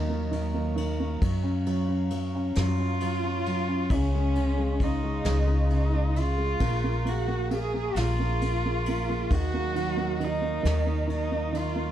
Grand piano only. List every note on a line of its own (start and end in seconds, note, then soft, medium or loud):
0.00 0.31 D#3 medium
0.00 0.09 A#3 medium
0.09 0.53 A#3 medium
0.31 0.74 D#3 medium
0.54 0.99 A#3 medium
0.76 1.20 D#3 medium
1.00 1.22 A#3 medium
1.22 1.65 F#3 medium
1.44 1.87 C#4 medium
1.67 2.10 F#3 medium
1.88 2.34 C#4 medium
2.11 2.56 F#3 medium
2.35 2.78 C#4 medium
2.57 3.00 F#3 medium
2.79 3.22 C#4 medium
3.02 3.45 F#3 medium
3.24 3.67 C#4 medium
3.47 3.90 F#3 medium
3.68 3.90 C#4 medium
3.93 4.35 C#3 medium
4.15 4.57 G#3 medium
4.36 4.80 C#3 medium
4.58 5.02 G#3 medium
4.81 5.24 C#3 medium
5.04 5.46 G#3 medium
5.25 5.70 C#3 medium
5.47 5.92 G#3 medium
5.72 6.15 C#3 medium
5.94 6.37 G#3 soft
6.16 6.60 C#3 medium
6.38 6.60 G#3 medium
6.60 6.82 A#3 medium
6.84 7.04 A#3 medium
7.05 7.26 A#3 medium
7.28 7.49 A#3 medium
7.51 7.72 A#3 medium
7.74 8.18 A#3 medium
7.98 9.27 F4 medium
8.19 8.40 A#3 medium
8.42 8.64 A#3 medium
8.66 8.87 A#3 medium
8.88 9.08 A#3 medium
9.09 9.31 A#3 medium
9.31 9.74 D#3 medium
9.54 9.95 A#3 medium
9.75 10.18 D#3 medium
9.97 10.40 A#3 medium
10.20 10.62 D#3 medium
10.41 10.85 A#3 medium
10.63 11.06 D#3 medium
10.86 11.30 A#3 medium
11.07 11.51 D#3 medium
11.31 11.74 A#3 medium
11.53 11.92 D#3 medium
11.76 11.92 A#3 medium